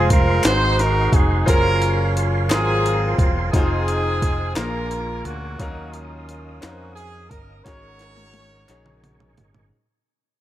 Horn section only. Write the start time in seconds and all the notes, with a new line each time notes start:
Already playing: C4 F4
0.11 A#4
0.46 D#4 F#4 C5
0.80 A#4
1.14 G#4
1.48 C#4 F4 A#4
2.50 C4 F4 G#4
3.52 C4 D#4 G#4
4.56 D4 F4 A#4
5.25 A#3 C#4 F#4
5.93 A#3 C#4 F4
6.62 F#4
6.96 G#4
7.30 A#4
7.64 F#4 A#4 C#5